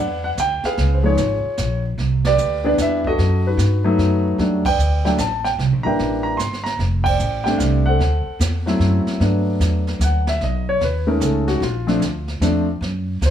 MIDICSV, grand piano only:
0, 0, Header, 1, 2, 480
1, 0, Start_track
1, 0, Key_signature, 1, "major"
1, 0, Tempo, 401338
1, 928, Time_signature, 3, 2, 24, 8
1, 15912, End_track
2, 0, Start_track
2, 0, Title_t, "Grand piano"
2, 0, Program_c, 0, 0
2, 0, Note_on_c, 0, 71, 68
2, 0, Note_on_c, 0, 74, 63
2, 0, Note_on_c, 0, 78, 85
2, 271, Note_off_c, 0, 78, 0
2, 289, Note_on_c, 0, 78, 85
2, 349, Note_off_c, 0, 78, 0
2, 425, Note_off_c, 0, 71, 0
2, 425, Note_off_c, 0, 74, 0
2, 476, Note_on_c, 0, 79, 93
2, 782, Note_on_c, 0, 77, 92
2, 785, Note_off_c, 0, 79, 0
2, 789, Note_on_c, 0, 68, 59
2, 792, Note_on_c, 0, 71, 69
2, 1130, Note_on_c, 0, 72, 57
2, 1153, Note_off_c, 0, 77, 0
2, 1234, Note_on_c, 0, 53, 62
2, 1241, Note_off_c, 0, 72, 0
2, 1241, Note_on_c, 0, 56, 61
2, 1245, Note_on_c, 0, 59, 58
2, 1246, Note_on_c, 0, 63, 70
2, 1263, Note_on_c, 0, 73, 79
2, 1264, Note_off_c, 0, 68, 0
2, 1275, Note_on_c, 0, 65, 57
2, 1282, Note_on_c, 0, 68, 49
2, 1378, Note_off_c, 0, 71, 0
2, 1387, Note_off_c, 0, 53, 0
2, 1391, Note_off_c, 0, 56, 0
2, 1393, Note_off_c, 0, 59, 0
2, 1393, Note_off_c, 0, 63, 0
2, 2164, Note_off_c, 0, 73, 0
2, 2170, Note_off_c, 0, 65, 0
2, 2174, Note_off_c, 0, 68, 0
2, 2710, Note_on_c, 0, 74, 91
2, 2716, Note_on_c, 0, 71, 65
2, 2719, Note_on_c, 0, 67, 65
2, 3162, Note_on_c, 0, 52, 75
2, 3162, Note_on_c, 0, 55, 66
2, 3165, Note_on_c, 0, 59, 73
2, 3168, Note_off_c, 0, 74, 0
2, 3169, Note_on_c, 0, 62, 83
2, 3186, Note_on_c, 0, 74, 84
2, 3245, Note_off_c, 0, 74, 0
2, 3301, Note_off_c, 0, 71, 0
2, 3302, Note_off_c, 0, 67, 0
2, 3369, Note_on_c, 0, 76, 89
2, 3671, Note_off_c, 0, 76, 0
2, 3674, Note_on_c, 0, 66, 67
2, 3674, Note_on_c, 0, 75, 93
2, 3675, Note_on_c, 0, 69, 63
2, 3774, Note_off_c, 0, 52, 0
2, 3774, Note_off_c, 0, 55, 0
2, 3776, Note_off_c, 0, 59, 0
2, 3778, Note_off_c, 0, 62, 0
2, 4133, Note_off_c, 0, 66, 0
2, 4149, Note_on_c, 0, 71, 74
2, 4151, Note_on_c, 0, 66, 53
2, 4152, Note_off_c, 0, 75, 0
2, 4156, Note_on_c, 0, 63, 57
2, 4260, Note_off_c, 0, 69, 0
2, 4593, Note_off_c, 0, 63, 0
2, 4595, Note_on_c, 0, 54, 74
2, 4598, Note_on_c, 0, 57, 69
2, 4602, Note_on_c, 0, 59, 66
2, 4611, Note_on_c, 0, 63, 86
2, 5048, Note_off_c, 0, 66, 0
2, 5048, Note_off_c, 0, 71, 0
2, 5211, Note_off_c, 0, 54, 0
2, 5213, Note_off_c, 0, 57, 0
2, 5215, Note_off_c, 0, 59, 0
2, 5219, Note_off_c, 0, 63, 0
2, 5244, Note_on_c, 0, 54, 61
2, 5247, Note_on_c, 0, 55, 50
2, 5249, Note_on_c, 0, 57, 52
2, 5254, Note_on_c, 0, 62, 66
2, 5528, Note_off_c, 0, 54, 0
2, 5530, Note_off_c, 0, 55, 0
2, 5531, Note_off_c, 0, 57, 0
2, 5533, Note_off_c, 0, 62, 0
2, 5570, Note_on_c, 0, 79, 92
2, 5595, Note_on_c, 0, 71, 56
2, 5600, Note_on_c, 0, 74, 57
2, 6013, Note_off_c, 0, 79, 0
2, 6038, Note_on_c, 0, 54, 63
2, 6040, Note_on_c, 0, 55, 63
2, 6043, Note_on_c, 0, 57, 62
2, 6043, Note_on_c, 0, 79, 77
2, 6047, Note_on_c, 0, 62, 72
2, 6103, Note_off_c, 0, 79, 0
2, 6180, Note_off_c, 0, 71, 0
2, 6183, Note_off_c, 0, 74, 0
2, 6189, Note_off_c, 0, 54, 0
2, 6190, Note_off_c, 0, 55, 0
2, 6191, Note_off_c, 0, 57, 0
2, 6194, Note_off_c, 0, 62, 0
2, 6204, Note_on_c, 0, 81, 86
2, 6498, Note_off_c, 0, 81, 0
2, 6512, Note_on_c, 0, 79, 82
2, 6572, Note_off_c, 0, 79, 0
2, 6977, Note_on_c, 0, 82, 91
2, 6993, Note_on_c, 0, 52, 66
2, 7002, Note_on_c, 0, 55, 57
2, 7005, Note_on_c, 0, 58, 56
2, 7006, Note_on_c, 0, 62, 71
2, 7013, Note_on_c, 0, 76, 61
2, 7017, Note_on_c, 0, 79, 64
2, 7435, Note_off_c, 0, 82, 0
2, 7454, Note_on_c, 0, 82, 91
2, 7609, Note_off_c, 0, 76, 0
2, 7610, Note_off_c, 0, 52, 0
2, 7611, Note_off_c, 0, 79, 0
2, 7615, Note_off_c, 0, 55, 0
2, 7616, Note_off_c, 0, 58, 0
2, 7617, Note_off_c, 0, 62, 0
2, 7621, Note_off_c, 0, 82, 0
2, 7621, Note_on_c, 0, 84, 85
2, 7925, Note_off_c, 0, 84, 0
2, 7937, Note_on_c, 0, 82, 94
2, 8103, Note_off_c, 0, 82, 0
2, 8418, Note_on_c, 0, 79, 89
2, 8463, Note_on_c, 0, 72, 59
2, 8464, Note_on_c, 0, 74, 63
2, 8880, Note_off_c, 0, 79, 0
2, 8898, Note_on_c, 0, 79, 78
2, 8920, Note_on_c, 0, 55, 68
2, 8927, Note_on_c, 0, 57, 64
2, 8930, Note_on_c, 0, 60, 59
2, 8932, Note_on_c, 0, 62, 74
2, 9054, Note_off_c, 0, 72, 0
2, 9055, Note_off_c, 0, 74, 0
2, 9064, Note_off_c, 0, 79, 0
2, 9066, Note_on_c, 0, 77, 73
2, 9139, Note_off_c, 0, 77, 0
2, 9397, Note_on_c, 0, 78, 83
2, 9436, Note_on_c, 0, 72, 55
2, 9438, Note_on_c, 0, 69, 54
2, 9534, Note_off_c, 0, 55, 0
2, 9537, Note_off_c, 0, 57, 0
2, 9539, Note_off_c, 0, 60, 0
2, 9540, Note_off_c, 0, 62, 0
2, 10358, Note_on_c, 0, 54, 69
2, 10363, Note_on_c, 0, 57, 63
2, 10370, Note_on_c, 0, 60, 59
2, 10373, Note_on_c, 0, 64, 75
2, 10792, Note_off_c, 0, 78, 0
2, 10812, Note_off_c, 0, 72, 0
2, 10813, Note_off_c, 0, 69, 0
2, 10973, Note_off_c, 0, 54, 0
2, 10976, Note_off_c, 0, 57, 0
2, 10979, Note_off_c, 0, 60, 0
2, 10981, Note_off_c, 0, 64, 0
2, 11001, Note_on_c, 0, 54, 55
2, 11006, Note_on_c, 0, 57, 47
2, 11010, Note_on_c, 0, 59, 51
2, 11013, Note_on_c, 0, 62, 61
2, 12001, Note_on_c, 0, 78, 71
2, 12291, Note_off_c, 0, 78, 0
2, 12306, Note_on_c, 0, 76, 79
2, 12346, Note_off_c, 0, 54, 0
2, 12349, Note_off_c, 0, 57, 0
2, 12350, Note_off_c, 0, 59, 0
2, 12352, Note_off_c, 0, 62, 0
2, 12456, Note_off_c, 0, 76, 0
2, 12485, Note_on_c, 0, 75, 71
2, 12773, Note_off_c, 0, 75, 0
2, 12785, Note_on_c, 0, 73, 84
2, 12935, Note_off_c, 0, 73, 0
2, 12965, Note_on_c, 0, 71, 68
2, 13236, Note_on_c, 0, 56, 63
2, 13242, Note_on_c, 0, 57, 60
2, 13242, Note_on_c, 0, 61, 55
2, 13247, Note_on_c, 0, 63, 69
2, 13253, Note_off_c, 0, 71, 0
2, 13253, Note_on_c, 0, 70, 72
2, 13410, Note_off_c, 0, 70, 0
2, 13436, Note_on_c, 0, 69, 61
2, 13727, Note_on_c, 0, 66, 76
2, 13728, Note_off_c, 0, 69, 0
2, 13853, Note_off_c, 0, 56, 0
2, 13856, Note_off_c, 0, 57, 0
2, 13856, Note_off_c, 0, 61, 0
2, 13859, Note_off_c, 0, 63, 0
2, 13886, Note_off_c, 0, 66, 0
2, 13906, Note_on_c, 0, 65, 73
2, 14195, Note_on_c, 0, 53, 73
2, 14202, Note_on_c, 0, 57, 67
2, 14205, Note_on_c, 0, 60, 61
2, 14207, Note_on_c, 0, 62, 76
2, 14349, Note_off_c, 0, 53, 0
2, 14352, Note_off_c, 0, 57, 0
2, 14354, Note_off_c, 0, 60, 0
2, 14355, Note_off_c, 0, 62, 0
2, 14644, Note_off_c, 0, 65, 0
2, 14847, Note_on_c, 0, 53, 64
2, 14849, Note_on_c, 0, 57, 60
2, 14850, Note_on_c, 0, 60, 56
2, 14852, Note_on_c, 0, 62, 78
2, 15131, Note_off_c, 0, 53, 0
2, 15133, Note_off_c, 0, 57, 0
2, 15133, Note_off_c, 0, 60, 0
2, 15134, Note_off_c, 0, 62, 0
2, 15852, Note_on_c, 0, 72, 77
2, 15912, Note_off_c, 0, 72, 0
2, 15912, End_track
0, 0, End_of_file